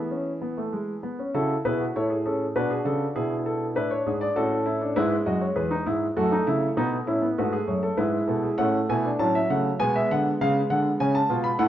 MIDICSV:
0, 0, Header, 1, 2, 480
1, 0, Start_track
1, 0, Key_signature, 3, "major"
1, 0, Tempo, 616650
1, 1049, Time_signature, 3, 2, 24, 8
1, 1525, Tempo, 598802
1, 4885, Tempo, 606061
1, 6811, Key_signature, 3, "minor"
1, 9265, End_track
2, 0, Start_track
2, 0, Title_t, "Grand piano"
2, 0, Program_c, 0, 0
2, 0, Note_on_c, 0, 52, 68
2, 0, Note_on_c, 0, 59, 61
2, 0, Note_on_c, 0, 68, 69
2, 0, Note_on_c, 0, 76, 68
2, 81, Note_off_c, 0, 59, 0
2, 86, Note_on_c, 0, 61, 60
2, 236, Note_off_c, 0, 61, 0
2, 322, Note_on_c, 0, 59, 58
2, 441, Note_off_c, 0, 59, 0
2, 448, Note_on_c, 0, 57, 59
2, 564, Note_off_c, 0, 57, 0
2, 565, Note_on_c, 0, 56, 64
2, 716, Note_off_c, 0, 56, 0
2, 779, Note_off_c, 0, 52, 0
2, 779, Note_off_c, 0, 68, 0
2, 781, Note_off_c, 0, 76, 0
2, 802, Note_on_c, 0, 59, 62
2, 923, Note_off_c, 0, 59, 0
2, 928, Note_on_c, 0, 61, 61
2, 1045, Note_off_c, 0, 61, 0
2, 1046, Note_on_c, 0, 49, 65
2, 1046, Note_on_c, 0, 64, 65
2, 1047, Note_on_c, 0, 66, 66
2, 1049, Note_on_c, 0, 69, 80
2, 1195, Note_off_c, 0, 49, 0
2, 1195, Note_off_c, 0, 64, 0
2, 1196, Note_off_c, 0, 66, 0
2, 1197, Note_off_c, 0, 69, 0
2, 1284, Note_on_c, 0, 47, 63
2, 1284, Note_on_c, 0, 64, 60
2, 1284, Note_on_c, 0, 71, 75
2, 1286, Note_on_c, 0, 68, 64
2, 1401, Note_on_c, 0, 66, 60
2, 1402, Note_off_c, 0, 68, 0
2, 1432, Note_off_c, 0, 71, 0
2, 1433, Note_off_c, 0, 47, 0
2, 1433, Note_off_c, 0, 64, 0
2, 1519, Note_off_c, 0, 66, 0
2, 1524, Note_on_c, 0, 45, 59
2, 1524, Note_on_c, 0, 64, 63
2, 1526, Note_on_c, 0, 73, 72
2, 1527, Note_on_c, 0, 69, 63
2, 1639, Note_on_c, 0, 68, 67
2, 1643, Note_off_c, 0, 73, 0
2, 1675, Note_off_c, 0, 64, 0
2, 1677, Note_off_c, 0, 69, 0
2, 1752, Note_off_c, 0, 68, 0
2, 1764, Note_on_c, 0, 68, 60
2, 1764, Note_on_c, 0, 69, 69
2, 1767, Note_on_c, 0, 61, 60
2, 1915, Note_off_c, 0, 68, 0
2, 1915, Note_off_c, 0, 69, 0
2, 1916, Note_off_c, 0, 61, 0
2, 1993, Note_off_c, 0, 45, 0
2, 2003, Note_on_c, 0, 66, 68
2, 2004, Note_on_c, 0, 62, 65
2, 2005, Note_on_c, 0, 47, 68
2, 2005, Note_on_c, 0, 71, 75
2, 2123, Note_on_c, 0, 68, 73
2, 2124, Note_off_c, 0, 71, 0
2, 2156, Note_off_c, 0, 47, 0
2, 2237, Note_on_c, 0, 49, 65
2, 2242, Note_on_c, 0, 69, 78
2, 2244, Note_off_c, 0, 68, 0
2, 2392, Note_off_c, 0, 49, 0
2, 2395, Note_off_c, 0, 69, 0
2, 2476, Note_off_c, 0, 66, 0
2, 2485, Note_on_c, 0, 47, 66
2, 2485, Note_on_c, 0, 64, 66
2, 2485, Note_on_c, 0, 68, 80
2, 2637, Note_off_c, 0, 68, 0
2, 2729, Note_on_c, 0, 69, 73
2, 2880, Note_off_c, 0, 69, 0
2, 2944, Note_off_c, 0, 62, 0
2, 2955, Note_off_c, 0, 64, 0
2, 2957, Note_off_c, 0, 47, 0
2, 2966, Note_on_c, 0, 45, 60
2, 2966, Note_on_c, 0, 62, 60
2, 2967, Note_on_c, 0, 64, 64
2, 2969, Note_on_c, 0, 71, 76
2, 3088, Note_on_c, 0, 73, 77
2, 3089, Note_off_c, 0, 71, 0
2, 3118, Note_off_c, 0, 45, 0
2, 3118, Note_off_c, 0, 64, 0
2, 3213, Note_on_c, 0, 44, 61
2, 3214, Note_on_c, 0, 68, 67
2, 3239, Note_off_c, 0, 73, 0
2, 3330, Note_on_c, 0, 74, 83
2, 3362, Note_off_c, 0, 44, 0
2, 3363, Note_off_c, 0, 68, 0
2, 3435, Note_off_c, 0, 62, 0
2, 3447, Note_on_c, 0, 66, 78
2, 3448, Note_off_c, 0, 74, 0
2, 3449, Note_on_c, 0, 61, 69
2, 3451, Note_on_c, 0, 45, 74
2, 3452, Note_on_c, 0, 69, 88
2, 3597, Note_off_c, 0, 66, 0
2, 3688, Note_on_c, 0, 64, 73
2, 3805, Note_off_c, 0, 64, 0
2, 3813, Note_on_c, 0, 62, 68
2, 3913, Note_off_c, 0, 61, 0
2, 3914, Note_off_c, 0, 45, 0
2, 3914, Note_off_c, 0, 69, 0
2, 3927, Note_off_c, 0, 62, 0
2, 3932, Note_on_c, 0, 64, 91
2, 3933, Note_on_c, 0, 71, 72
2, 3935, Note_on_c, 0, 44, 72
2, 3936, Note_on_c, 0, 56, 73
2, 4078, Note_off_c, 0, 64, 0
2, 4079, Note_off_c, 0, 71, 0
2, 4080, Note_off_c, 0, 44, 0
2, 4171, Note_on_c, 0, 66, 82
2, 4172, Note_on_c, 0, 42, 70
2, 4173, Note_on_c, 0, 75, 69
2, 4285, Note_off_c, 0, 75, 0
2, 4293, Note_on_c, 0, 73, 65
2, 4317, Note_off_c, 0, 42, 0
2, 4317, Note_off_c, 0, 66, 0
2, 4405, Note_off_c, 0, 73, 0
2, 4409, Note_on_c, 0, 40, 65
2, 4409, Note_on_c, 0, 68, 76
2, 4410, Note_on_c, 0, 71, 69
2, 4522, Note_off_c, 0, 68, 0
2, 4530, Note_on_c, 0, 63, 76
2, 4555, Note_off_c, 0, 40, 0
2, 4557, Note_off_c, 0, 71, 0
2, 4643, Note_off_c, 0, 63, 0
2, 4652, Note_on_c, 0, 68, 61
2, 4654, Note_on_c, 0, 44, 61
2, 4655, Note_on_c, 0, 64, 76
2, 4799, Note_off_c, 0, 68, 0
2, 4801, Note_off_c, 0, 44, 0
2, 4801, Note_off_c, 0, 64, 0
2, 4860, Note_off_c, 0, 56, 0
2, 4895, Note_on_c, 0, 42, 68
2, 4895, Note_on_c, 0, 57, 70
2, 4896, Note_on_c, 0, 69, 71
2, 4897, Note_on_c, 0, 66, 87
2, 5008, Note_off_c, 0, 66, 0
2, 5020, Note_on_c, 0, 63, 76
2, 5041, Note_off_c, 0, 42, 0
2, 5129, Note_off_c, 0, 63, 0
2, 5137, Note_on_c, 0, 64, 82
2, 5140, Note_on_c, 0, 49, 69
2, 5282, Note_off_c, 0, 64, 0
2, 5284, Note_off_c, 0, 49, 0
2, 5357, Note_off_c, 0, 57, 0
2, 5373, Note_on_c, 0, 47, 72
2, 5375, Note_on_c, 0, 59, 73
2, 5375, Note_on_c, 0, 63, 85
2, 5520, Note_off_c, 0, 47, 0
2, 5521, Note_off_c, 0, 59, 0
2, 5521, Note_off_c, 0, 63, 0
2, 5611, Note_on_c, 0, 45, 67
2, 5615, Note_on_c, 0, 64, 77
2, 5616, Note_on_c, 0, 61, 66
2, 5727, Note_off_c, 0, 61, 0
2, 5732, Note_on_c, 0, 59, 63
2, 5758, Note_off_c, 0, 45, 0
2, 5761, Note_off_c, 0, 64, 0
2, 5822, Note_off_c, 0, 69, 0
2, 5845, Note_off_c, 0, 59, 0
2, 5860, Note_on_c, 0, 66, 79
2, 5861, Note_on_c, 0, 57, 63
2, 5863, Note_on_c, 0, 44, 63
2, 5863, Note_on_c, 0, 71, 59
2, 5969, Note_off_c, 0, 66, 0
2, 5973, Note_on_c, 0, 68, 77
2, 6006, Note_off_c, 0, 44, 0
2, 6006, Note_off_c, 0, 71, 0
2, 6091, Note_on_c, 0, 42, 59
2, 6092, Note_on_c, 0, 73, 60
2, 6119, Note_off_c, 0, 68, 0
2, 6213, Note_on_c, 0, 69, 75
2, 6238, Note_off_c, 0, 42, 0
2, 6239, Note_off_c, 0, 73, 0
2, 6319, Note_off_c, 0, 57, 0
2, 6326, Note_off_c, 0, 69, 0
2, 6328, Note_on_c, 0, 71, 67
2, 6331, Note_on_c, 0, 44, 65
2, 6331, Note_on_c, 0, 56, 67
2, 6331, Note_on_c, 0, 64, 77
2, 6478, Note_off_c, 0, 71, 0
2, 6479, Note_off_c, 0, 44, 0
2, 6570, Note_on_c, 0, 47, 66
2, 6571, Note_on_c, 0, 69, 63
2, 6687, Note_off_c, 0, 69, 0
2, 6694, Note_on_c, 0, 68, 61
2, 6720, Note_off_c, 0, 47, 0
2, 6799, Note_off_c, 0, 56, 0
2, 6799, Note_off_c, 0, 64, 0
2, 6808, Note_on_c, 0, 78, 91
2, 6809, Note_on_c, 0, 61, 74
2, 6810, Note_off_c, 0, 68, 0
2, 6810, Note_on_c, 0, 57, 73
2, 6812, Note_on_c, 0, 45, 77
2, 6960, Note_off_c, 0, 61, 0
2, 6960, Note_off_c, 0, 78, 0
2, 6962, Note_off_c, 0, 45, 0
2, 7059, Note_on_c, 0, 47, 75
2, 7059, Note_on_c, 0, 64, 68
2, 7060, Note_on_c, 0, 80, 85
2, 7173, Note_off_c, 0, 64, 0
2, 7180, Note_on_c, 0, 62, 66
2, 7206, Note_off_c, 0, 47, 0
2, 7207, Note_off_c, 0, 80, 0
2, 7279, Note_off_c, 0, 57, 0
2, 7293, Note_off_c, 0, 62, 0
2, 7295, Note_on_c, 0, 45, 69
2, 7296, Note_on_c, 0, 54, 70
2, 7296, Note_on_c, 0, 61, 67
2, 7296, Note_on_c, 0, 81, 85
2, 7411, Note_off_c, 0, 81, 0
2, 7421, Note_on_c, 0, 76, 81
2, 7443, Note_off_c, 0, 45, 0
2, 7443, Note_off_c, 0, 61, 0
2, 7533, Note_off_c, 0, 76, 0
2, 7539, Note_on_c, 0, 49, 71
2, 7539, Note_on_c, 0, 57, 64
2, 7539, Note_on_c, 0, 78, 78
2, 7686, Note_off_c, 0, 49, 0
2, 7686, Note_off_c, 0, 57, 0
2, 7686, Note_off_c, 0, 78, 0
2, 7759, Note_off_c, 0, 54, 0
2, 7772, Note_on_c, 0, 59, 76
2, 7772, Note_on_c, 0, 80, 96
2, 7774, Note_on_c, 0, 56, 75
2, 7775, Note_on_c, 0, 47, 80
2, 7889, Note_off_c, 0, 80, 0
2, 7899, Note_on_c, 0, 76, 87
2, 7923, Note_off_c, 0, 47, 0
2, 8011, Note_off_c, 0, 76, 0
2, 8021, Note_on_c, 0, 50, 79
2, 8023, Note_on_c, 0, 78, 94
2, 8165, Note_off_c, 0, 50, 0
2, 8167, Note_off_c, 0, 78, 0
2, 8236, Note_off_c, 0, 56, 0
2, 8258, Note_on_c, 0, 49, 80
2, 8260, Note_on_c, 0, 56, 78
2, 8260, Note_on_c, 0, 77, 94
2, 8404, Note_off_c, 0, 49, 0
2, 8405, Note_off_c, 0, 77, 0
2, 8488, Note_on_c, 0, 50, 74
2, 8490, Note_on_c, 0, 78, 92
2, 8637, Note_off_c, 0, 50, 0
2, 8638, Note_off_c, 0, 78, 0
2, 8699, Note_off_c, 0, 59, 0
2, 8727, Note_on_c, 0, 61, 73
2, 8727, Note_on_c, 0, 80, 91
2, 8729, Note_on_c, 0, 49, 74
2, 8842, Note_on_c, 0, 81, 94
2, 8844, Note_off_c, 0, 80, 0
2, 8876, Note_off_c, 0, 61, 0
2, 8877, Note_off_c, 0, 49, 0
2, 8960, Note_on_c, 0, 47, 73
2, 8963, Note_on_c, 0, 65, 77
2, 8993, Note_off_c, 0, 81, 0
2, 9073, Note_on_c, 0, 83, 90
2, 9111, Note_off_c, 0, 47, 0
2, 9113, Note_off_c, 0, 65, 0
2, 9184, Note_off_c, 0, 56, 0
2, 9192, Note_on_c, 0, 57, 81
2, 9193, Note_on_c, 0, 45, 83
2, 9193, Note_on_c, 0, 64, 82
2, 9194, Note_on_c, 0, 78, 104
2, 9196, Note_off_c, 0, 83, 0
2, 9265, Note_off_c, 0, 45, 0
2, 9265, Note_off_c, 0, 57, 0
2, 9265, Note_off_c, 0, 64, 0
2, 9265, Note_off_c, 0, 78, 0
2, 9265, End_track
0, 0, End_of_file